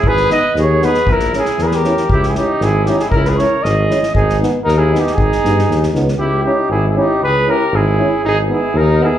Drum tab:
SD |-oo-o-oo|-ooooooo|-oo-o-oo|-oo-o-oo|
BD |o-------|o-------|o-------|o-------|

SD |-oo-o-oo|-ooooooo|--------|--------|
BD |o-------|o-------|--------|--------|

SD |--------|
BD |--------|